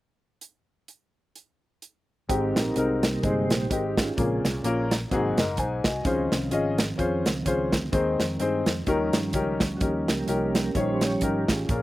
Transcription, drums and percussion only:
0.41 closed hi-hat medium
0.88 closed hi-hat soft
1.35 closed hi-hat soft
1.82 closed hi-hat medium
2.29 kick loud
2.29 closed hi-hat medium
2.56 snare loud
2.56 closed hi-hat medium
2.76 closed hi-hat medium
3.03 snare loud
3.03 closed hi-hat medium
3.23 kick medium
3.23 closed hi-hat medium
3.50 snare loud
3.50 closed hi-hat medium
3.71 kick medium
3.71 closed hi-hat medium
3.97 kick medium
3.97 snare loud
3.97 closed hi-hat medium
4.18 kick loud
4.18 closed hi-hat medium
4.45 snare medium
4.45 closed hi-hat medium
4.64 closed hi-hat medium
4.91 snare loud
4.91 closed hi-hat medium
5.11 kick medium
5.11 closed hi-hat medium
5.38 snare loud
5.38 closed hi-hat medium
5.57 kick medium
5.57 closed hi-hat medium
5.84 kick medium
5.84 snare loud
5.84 closed hi-hat medium
6.05 kick loud
6.05 closed hi-hat medium
6.32 snare medium
6.32 closed hi-hat medium
6.51 closed hi-hat medium
6.78 snare loud
6.78 closed hi-hat medium
6.99 kick medium
6.99 closed hi-hat medium
7.26 snare loud
7.26 closed hi-hat medium
7.46 kick medium
7.46 closed hi-hat medium
7.72 kick medium
7.72 snare loud
7.72 closed hi-hat medium
7.93 kick loud
7.93 closed hi-hat medium
8.20 snare medium
8.20 closed hi-hat medium
8.40 closed hi-hat medium
8.66 snare medium
8.66 closed hi-hat medium
8.87 kick medium
8.87 closed hi-hat medium
9.13 snare loud
9.13 closed hi-hat medium
9.33 kick medium
9.33 closed hi-hat medium
9.60 kick medium
9.60 snare medium
9.60 closed hi-hat medium
9.81 kick loud
9.81 closed hi-hat medium
10.08 snare loud
10.08 closed hi-hat medium
10.28 closed hi-hat medium
10.55 snare medium
10.55 closed hi-hat medium
10.75 kick medium
10.75 closed hi-hat medium
11.01 snare medium
11.01 closed hi-hat medium
11.21 kick medium
11.21 closed hi-hat medium
11.48 kick medium
11.48 snare loud
11.48 closed hi-hat medium
11.69 kick loud
11.69 closed hi-hat medium

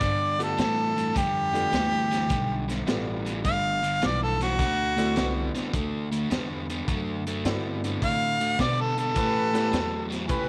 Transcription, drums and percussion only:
0.01 kick loud
0.01 snare soft
0.01 closed hi-hat medium
0.40 closed hi-hat medium
0.58 snare loud
0.58 closed hi-hat medium
0.98 closed hi-hat medium
1.16 kick loud
1.16 closed hi-hat medium
1.55 closed hi-hat medium
1.73 snare loud
1.73 closed hi-hat medium
2.12 snare soft
2.12 closed hi-hat medium
2.30 kick loud
2.30 closed hi-hat medium
2.69 snare soft
2.69 closed hi-hat medium
2.87 snare loud
2.87 closed hi-hat medium
3.26 closed hi-hat medium
3.45 kick loud
3.45 closed hi-hat medium
3.84 closed hi-hat medium
4.02 snare loud
4.02 closed hi-hat medium
4.41 snare soft
4.41 closed hi-hat medium
4.59 kick loud
4.59 snare soft
4.59 closed hi-hat medium
4.98 snare soft
4.98 closed hi-hat medium
5.16 snare loud
5.16 closed hi-hat medium
5.55 snare soft
5.55 closed hi-hat medium
5.74 kick loud
5.74 closed hi-hat medium
6.12 closed hi-hat medium
6.31 snare loud
6.31 closed hi-hat medium
6.70 closed hi-hat medium
6.88 kick loud
6.88 closed hi-hat medium
7.27 closed hi-hat medium
7.45 snare loud
7.45 closed hi-hat medium
7.84 closed hi-hat medium
8.02 kick loud
8.02 closed hi-hat medium
8.41 closed hi-hat medium
8.59 kick medium
8.59 snare loud
8.59 closed hi-hat medium
8.98 closed hi-hat medium
9.16 kick loud
9.16 closed hi-hat medium
9.55 snare soft
9.55 closed hi-hat medium
9.73 snare loud
9.73 closed hi-hat medium
10.12 snare soft
10.12 closed hi-hat medium
10.29 kick loud
10.29 closed hi-hat medium

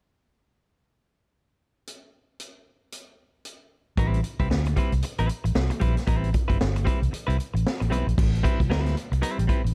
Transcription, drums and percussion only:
1.87 closed hi-hat soft
2.40 closed hi-hat medium
2.92 closed hi-hat medium
3.45 closed hi-hat soft
3.97 kick medium
3.97 closed hi-hat medium
4.14 closed hi-hat soft
4.24 closed hi-hat medium
4.40 kick medium
4.40 closed hi-hat soft
4.51 snare medium
4.65 closed hi-hat soft
4.76 kick medium
4.76 closed hi-hat medium
4.92 closed hi-hat soft
5.02 closed hi-hat medium
5.18 closed hi-hat soft
5.29 closed hi-hat medium
5.45 closed hi-hat soft
5.55 snare loud
5.70 closed hi-hat medium
5.81 kick medium
5.81 closed hi-hat medium
5.97 snare soft
5.97 closed hi-hat soft
6.07 kick medium
6.07 closed hi-hat medium
6.24 closed hi-hat soft
6.34 kick medium
6.34 closed hi-hat medium
6.50 kick medium
6.50 closed hi-hat soft
6.61 snare loud
6.76 closed hi-hat medium
6.87 kick medium
6.87 closed hi-hat medium
7.03 closed hi-hat soft
7.13 closed hi-hat medium
7.30 closed hi-hat soft
7.40 closed hi-hat medium
7.56 closed hi-hat soft
7.67 snare loud
7.82 closed hi-hat medium
7.92 closed hi-hat medium
8.09 closed hi-hat soft
8.18 kick loud
8.18 crash medium
8.35 closed hi-hat soft
8.45 kick medium
8.45 closed hi-hat medium
8.60 kick medium
8.60 closed hi-hat soft
8.71 snare loud
8.86 snare soft
8.86 closed hi-hat soft
8.97 closed hi-hat medium
9.13 closed hi-hat medium
9.23 closed hi-hat loud
9.39 closed hi-hat medium
9.49 kick medium
9.49 closed hi-hat medium
9.66 closed hi-hat medium

